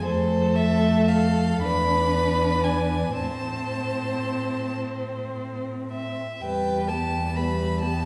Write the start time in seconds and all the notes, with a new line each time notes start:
0.05 F2 A3 A4 C5
0.55 E5
1.08 F5
1.61 E2 D4 B4 B5
2.64 G#5
3.17 A2 C4 C5 A5
5.92 E5
6.41 E2 G3 B4 G5
6.88 B3 G4 A5
7.36 G3 B4 B5
7.81 B3 G4 A5